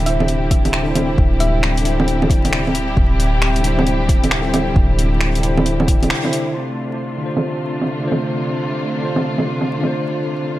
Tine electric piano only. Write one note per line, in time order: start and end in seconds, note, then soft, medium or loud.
0.02 0.82 D3 medium
0.02 0.83 D4 medium
0.07 0.84 E4 medium
0.07 0.86 C5 medium
0.83 1.80 D3 medium
0.83 1.82 D4 medium
0.88 1.83 E4 medium
0.88 1.85 C5 medium
1.81 2.61 D3 medium
1.81 2.62 D4 medium
1.86 2.64 E4 medium
1.86 2.65 C5 medium
3.59 4.40 D3 medium
3.59 4.41 D4 medium
3.65 4.42 E4 medium
3.65 4.44 C5 medium
4.41 5.37 D3 medium
4.41 5.40 D4 medium
4.47 5.42 E4 medium
4.47 5.43 C5 medium
5.38 6.19 D3 medium
5.38 6.20 D4 medium
5.43 6.21 E4 medium
5.43 6.23 C5 medium
6.22 6.53 D3 medium
6.22 6.54 D4 medium
6.22 6.54 E4 medium
6.22 6.55 C5 medium
7.18 7.98 D3 medium
7.18 8.00 D4 medium
7.24 8.01 F4 medium
7.24 8.02 C5 medium
8.00 8.96 D3 medium
8.00 8.99 D4 medium
8.05 9.00 F4 medium
8.05 9.01 C5 medium
8.97 9.77 D3 medium
8.97 9.79 D4 medium
9.02 9.80 F4 medium
9.02 9.81 C5 medium
9.78 10.59 D3 medium
9.78 10.59 D4 medium
9.83 10.59 F4 medium
9.83 10.59 C5 medium